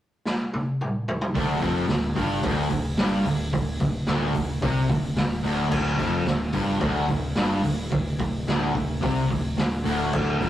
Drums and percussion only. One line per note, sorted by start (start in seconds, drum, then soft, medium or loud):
0.26 snare medium
0.53 high tom medium
0.81 mid tom medium
1.08 floor tom loud
1.21 floor tom loud
1.35 kick loud
1.35 open hi-hat medium
1.62 kick medium
1.62 open hi-hat medium
1.88 snare loud
1.88 open hi-hat medium
2.16 kick medium
2.16 open hi-hat medium
2.43 kick loud
2.43 open hi-hat medium
2.70 kick medium
2.70 open hi-hat medium
2.97 snare loud
2.97 open hi-hat medium
3.25 open hi-hat medium
3.53 kick loud
3.53 open hi-hat medium
3.80 kick medium
3.80 open hi-hat medium
4.06 snare loud
4.06 open hi-hat medium
4.34 kick medium
4.34 open hi-hat medium
4.62 kick loud
4.62 open hi-hat medium
4.90 kick medium
4.90 open hi-hat medium
5.16 snare loud
5.16 open hi-hat medium
5.44 open hi-hat medium
5.71 kick loud
5.71 crash loud
5.98 kick medium
5.98 open hi-hat medium
6.26 snare loud
6.26 open hi-hat medium
6.53 kick medium
6.53 open hi-hat medium
6.80 kick loud
6.80 open hi-hat medium
7.08 kick medium
7.08 open hi-hat medium
7.35 snare loud
7.35 open hi-hat medium
7.63 open hi-hat medium
7.91 kick loud
7.91 open hi-hat medium
8.19 kick medium
8.19 open hi-hat medium
8.48 snare loud
8.48 open hi-hat medium
8.75 kick medium
8.75 open hi-hat medium
9.03 kick loud
9.03 open hi-hat medium
9.30 kick medium
9.30 open hi-hat medium
9.58 snare loud
9.58 open hi-hat medium
9.85 open hi-hat medium
10.13 kick loud
10.13 crash loud
10.41 kick medium
10.41 open hi-hat medium